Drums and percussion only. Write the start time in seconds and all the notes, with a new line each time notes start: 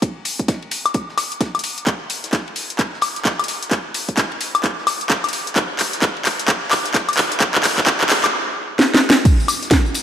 0.02 kick, closed hi-hat, ride
0.25 open hi-hat, ride
0.39 kick, closed hi-hat
0.48 kick, snare, closed hi-hat, ride
0.62 ride
0.71 open hi-hat, ride
0.85 snare, closed hi-hat, high woodblock
0.94 kick, closed hi-hat, ride
1.09 snare
1.18 snare, open hi-hat, ride, high woodblock
1.32 closed hi-hat
1.41 kick, snare, closed hi-hat, ride
1.54 snare, closed hi-hat, high woodblock
1.59 closed hi-hat
1.64 open hi-hat, ride
1.78 closed hi-hat
1.87 kick, clap, closed hi-hat, ride
2.10 open hi-hat, ride
2.24 snare, closed hi-hat
2.33 kick, snare, clap, closed hi-hat, ride
2.48 ride
2.56 open hi-hat, ride
2.70 closed hi-hat
2.79 kick, clap, closed hi-hat, ride
2.93 snare
3.02 open hi-hat, ride, high woodblock
3.16 snare, closed hi-hat
3.25 kick, snare, clap, closed hi-hat, ride
3.39 snare, closed hi-hat, high woodblock
3.44 closed hi-hat
3.48 open hi-hat, ride
3.63 closed hi-hat
3.71 kick, clap, closed hi-hat, ride
3.94 open hi-hat, ride
4.09 kick, closed hi-hat
4.17 kick, snare, clap, closed hi-hat, ride
4.32 ride
4.41 open hi-hat, ride
4.55 snare, closed hi-hat, high woodblock
4.64 kick, clap, closed hi-hat, ride
4.78 snare
4.87 snare, open hi-hat, ride, high woodblock
5.01 closed hi-hat
5.10 kick, snare, clap, closed hi-hat, ride
5.23 snare, closed hi-hat, high woodblock
5.29 closed hi-hat
5.33 open hi-hat, ride
5.47 closed hi-hat
5.56 kick, clap, closed hi-hat, ride
5.79 clap, open hi-hat, ride
5.93 snare, closed hi-hat
6.02 kick, snare, clap, closed hi-hat, ride
6.17 ride
6.25 clap, open hi-hat, ride
6.39 closed hi-hat
6.48 kick, clap, closed hi-hat, ride
6.63 snare
6.71 clap, open hi-hat, ride, high woodblock
6.86 snare, closed hi-hat
6.94 kick, snare, clap, closed hi-hat, ride
7.08 snare, closed hi-hat, high woodblock
7.13 closed hi-hat
7.17 snare, clap, open hi-hat, ride
7.32 closed hi-hat
7.40 kick, clap, closed hi-hat, ride
7.55 clap
7.64 snare, clap, open hi-hat, ride
7.71 snare, ride
7.78 kick, snare, clap, closed hi-hat, ride
7.82 snare, ride
7.87 kick, snare, clap, closed hi-hat, ride
8.01 clap, ride
8.09 snare, clap, open hi-hat, ride
8.24 snare, clap, closed hi-hat, high woodblock
8.79 snare
8.94 snare
9.10 snare
9.25 kick, closed hi-hat, crash, ride, tambourine
9.40 tambourine
9.48 open hi-hat, ride, tambourine, high woodblock
9.63 snare, closed hi-hat, tambourine
9.71 kick, snare, closed hi-hat, ride, tambourine
9.85 ride, tambourine
9.94 open hi-hat, ride, tambourine